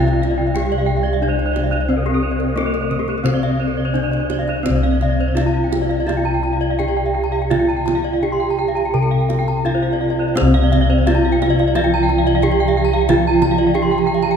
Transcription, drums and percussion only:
0.08 kendang slap soft
0.23 kendang low soft
0.56 kendang low soft
0.72 kendang slap soft
1.06 kendang slap soft
1.39 kendang slap soft
1.56 kendang high soft
1.73 kendang slap soft
2.06 kendang slap soft
2.40 kendang slap soft
2.57 kendang high soft
2.74 kendang slap soft
2.91 kendang low soft
3.08 kendang slap soft
3.26 kendang high soft
3.26 kendang low soft
3.43 kendang slap soft
3.95 kendang low soft
4.13 kendang slap soft
4.30 kendang high soft
4.48 kendang slap soft
4.66 kendang high soft
4.66 kendang low soft
4.84 kendang slap soft
5.01 kendang slap soft
5.01 kendang low soft
5.37 kendang high soft
5.73 kendang high soft
5.91 kendang slap soft
6.09 kendang slap soft
6.09 kendang high soft
6.62 kendang slap soft
6.80 kendang slap soft
6.80 kendang low soft
7.51 kendang high soft
7.51 kendang low soft
7.70 kendang slap soft
7.88 kendang slap soft
7.88 kendang high soft
7.88 kendang low soft
8.77 kendang slap soft
8.94 kendang slap soft
9.30 kendang high soft
9.48 kendang slap soft
9.66 kendang slap soft
9.66 kendang low soft
10.37 kendang high soft
10.37 kendang low medium
10.54 kendang slap soft
10.73 kendang slap soft
10.73 kendang low soft
11.07 kendang high soft
11.42 kendang high soft
11.59 kendang slap soft
11.75 kendang slap soft
11.75 kendang high soft
12.27 kendang slap soft
12.42 kendang slap soft
12.42 kendang low soft
13.09 kendang high soft
13.09 kendang low medium
13.42 kendang slap soft
13.42 kendang high soft
13.42 kendang low soft
13.74 kendang slap soft
14.22 kendang slap soft

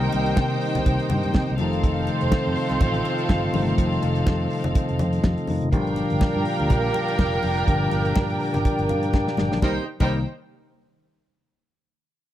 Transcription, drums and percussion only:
0.12 closed hi-hat medium
0.12 muted conga medium
0.26 closed hi-hat soft
0.37 kick loud
0.37 snare loud
0.37 high conga medium
0.61 open hi-hat medium
0.75 snare soft
0.75 closed hi-hat soft
0.75 low conga medium
0.86 kick loud
0.86 closed hi-hat medium
0.86 muted conga medium
0.99 closed hi-hat soft
1.10 closed hi-hat medium
1.10 muted conga medium
1.10 low conga medium
1.23 closed hi-hat soft
1.34 kick loud
1.34 snare loud
1.34 high conga loud
1.58 closed hi-hat medium
1.58 high conga medium
1.73 closed hi-hat soft
1.84 kick loud
1.84 closed hi-hat medium
2.07 closed hi-hat medium
2.07 muted conga soft
2.21 closed hi-hat soft
2.32 kick loud
2.32 snare loud
2.32 high conga medium
2.55 open hi-hat medium
2.69 snare soft
2.69 closed hi-hat medium
2.81 kick loud
2.81 closed hi-hat medium
2.81 muted conga medium
2.81 low conga medium
2.94 closed hi-hat soft
3.05 closed hi-hat medium
3.05 muted conga medium
3.18 closed hi-hat medium
3.29 kick loud
3.29 snare loud
3.29 high conga loud
3.54 open hi-hat medium
3.54 high conga medium
3.68 closed hi-hat soft
3.78 kick loud
3.78 closed hi-hat medium
3.92 closed hi-hat soft
4.02 closed hi-hat medium
4.02 muted conga soft
4.15 closed hi-hat soft
4.26 kick loud
4.26 snare loud
4.26 high conga medium
4.50 open hi-hat medium
4.64 closed hi-hat medium
4.64 low conga medium
4.75 kick loud
4.75 closed hi-hat medium
4.75 muted conga medium
4.89 closed hi-hat soft
4.99 closed hi-hat medium
4.99 muted conga medium
4.99 low conga medium
5.13 closed hi-hat medium
5.24 kick loud
5.24 snare loud
5.24 high conga loud
5.38 closed hi-hat soft
5.47 open hi-hat medium
5.47 high conga medium
5.62 closed hi-hat soft
5.72 kick loud
5.72 closed hi-hat medium
5.87 closed hi-hat soft
5.96 closed hi-hat medium
5.96 muted conga medium
6.10 closed hi-hat soft
6.21 kick loud
6.21 snare loud
6.21 high conga medium
6.45 open hi-hat medium
6.59 closed hi-hat soft
6.70 kick loud
6.70 closed hi-hat medium
6.70 muted conga medium
6.70 low conga medium
6.94 closed hi-hat medium
6.94 muted conga medium
7.08 closed hi-hat medium
7.19 kick loud
7.19 snare loud
7.19 high conga loud
7.33 closed hi-hat soft
7.43 open hi-hat medium
7.43 high conga medium
7.57 closed hi-hat soft
7.68 kick loud
7.68 closed hi-hat medium
7.68 muted conga soft
7.91 closed hi-hat medium
7.91 muted conga soft
8.05 closed hi-hat soft
8.16 kick loud
8.16 snare loud
8.16 high conga medium
8.30 closed hi-hat soft
8.40 open hi-hat medium
8.54 snare soft
8.54 closed hi-hat soft
8.54 low conga medium
8.65 kick loud
8.65 closed hi-hat medium
8.65 muted conga medium
8.79 closed hi-hat soft
8.89 closed hi-hat medium
8.89 muted conga medium
9.03 closed hi-hat soft
9.14 kick loud
9.14 snare medium
9.14 high conga loud
9.28 snare medium
9.37 snare loud
9.37 high conga medium
9.52 snare medium
9.62 kick loud
9.62 snare medium
9.62 muted conga medium
10.00 kick loud
10.00 crash medium
10.00 muted conga medium

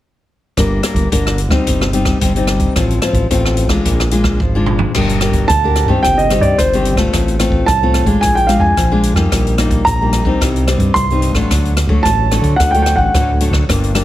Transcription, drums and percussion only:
0.57 kick medium
0.57 cross-stick medium
0.57 closed hi-hat soft
0.83 cross-stick medium
0.83 closed hi-hat soft
0.96 kick medium
0.96 closed hi-hat soft
1.12 kick medium
1.12 closed hi-hat medium
1.27 cross-stick medium
1.27 closed hi-hat soft
1.38 closed hi-hat soft
1.51 kick soft
1.51 cross-stick medium
1.67 kick medium
1.67 closed hi-hat medium
1.81 cross-stick medium
1.93 closed hi-hat soft
2.05 kick medium
2.05 cross-stick medium
2.05 closed hi-hat soft
2.21 kick medium
2.21 closed hi-hat medium
2.36 closed hi-hat soft
2.47 cross-stick medium
2.47 closed hi-hat soft
2.60 kick medium
2.60 closed hi-hat soft
2.76 kick medium
2.76 cross-stick medium
2.76 closed hi-hat medium
2.91 closed hi-hat soft
3.02 cross-stick medium
3.02 closed hi-hat soft
3.14 kick medium
3.14 closed hi-hat soft
3.31 kick medium
3.31 closed hi-hat medium
3.45 cross-stick soft
3.57 closed hi-hat soft
3.69 kick soft
3.69 cross-stick medium
3.69 closed hi-hat soft
3.85 kick medium
3.85 closed hi-hat medium
4.00 cross-stick medium
4.00 closed hi-hat soft
4.11 closed hi-hat soft
4.24 kick medium
4.24 cross-stick medium
4.40 kick medium
4.66 mid tom medium
4.79 floor tom soft
4.95 kick medium
4.95 cross-stick medium
4.95 crash medium
5.09 closed hi-hat soft
5.21 cross-stick medium
5.21 closed hi-hat soft
5.33 kick medium
5.33 closed hi-hat soft
5.49 kick medium
5.49 cross-stick medium
5.49 closed hi-hat medium
5.76 cross-stick soft
5.76 closed hi-hat soft
5.88 kick medium
6.04 kick medium
6.04 cross-stick medium
6.04 closed hi-hat medium
6.19 closed hi-hat soft
6.30 cross-stick medium
6.30 closed hi-hat soft
6.43 kick medium
6.43 closed hi-hat soft
6.59 kick medium
6.59 cross-stick medium
6.59 closed hi-hat medium
6.73 closed hi-hat soft
6.85 closed hi-hat soft
6.97 kick medium
6.97 cross-stick medium
6.97 closed hi-hat soft
7.13 kick medium
7.13 cross-stick medium
7.13 closed hi-hat medium
7.28 closed hi-hat soft
7.40 cross-stick medium
7.40 closed hi-hat soft
7.52 kick medium
7.68 kick medium
7.68 cross-stick medium
7.68 closed hi-hat soft
7.94 cross-stick medium
7.94 closed hi-hat soft
8.06 kick medium
8.06 closed hi-hat soft
8.22 kick medium
8.22 cross-stick medium
8.22 closed hi-hat medium
8.37 closed hi-hat soft
8.49 cross-stick medium
8.49 closed hi-hat soft
8.61 kick medium
8.77 kick medium
8.77 cross-stick medium
8.77 closed hi-hat medium
9.03 closed hi-hat soft
9.16 kick soft
9.16 cross-stick soft
9.32 kick medium
9.32 cross-stick medium
9.32 closed hi-hat medium
9.47 closed hi-hat soft
9.58 cross-stick medium
9.58 closed hi-hat soft
9.71 kick medium
9.71 closed hi-hat soft
9.87 kick medium
9.87 cross-stick medium
9.87 closed hi-hat medium
10.13 cross-stick medium
10.13 closed hi-hat soft
10.25 kick medium
10.41 kick medium
10.41 cross-stick medium
10.41 closed hi-hat medium
10.56 closed hi-hat soft
10.68 cross-stick medium
10.68 closed hi-hat soft
10.80 kick medium
10.80 closed hi-hat soft
10.96 kick medium
10.96 cross-stick medium
10.96 closed hi-hat medium
11.10 closed hi-hat soft
11.22 closed hi-hat soft
11.35 kick medium
11.35 cross-stick soft
11.35 closed hi-hat soft
11.51 kick medium
11.51 cross-stick medium
11.51 closed hi-hat medium
11.65 closed hi-hat soft
11.77 cross-stick medium
11.77 closed hi-hat soft
11.89 kick medium
12.05 kick medium
12.05 cross-stick medium
12.05 closed hi-hat medium
12.31 cross-stick medium
12.31 closed hi-hat soft
12.44 kick medium
12.44 closed hi-hat soft
12.60 kick medium
12.60 cross-stick medium
12.60 closed hi-hat medium
12.74 closed hi-hat soft
12.86 cross-stick medium
12.86 closed hi-hat soft
12.98 kick medium
13.14 kick medium
13.14 cross-stick medium
13.14 closed hi-hat soft
13.41 closed hi-hat soft
13.53 kick soft
13.53 cross-stick medium
13.69 kick medium
13.69 cross-stick medium
13.69 closed hi-hat medium
13.84 closed hi-hat soft
13.95 cross-stick medium
13.95 closed hi-hat soft

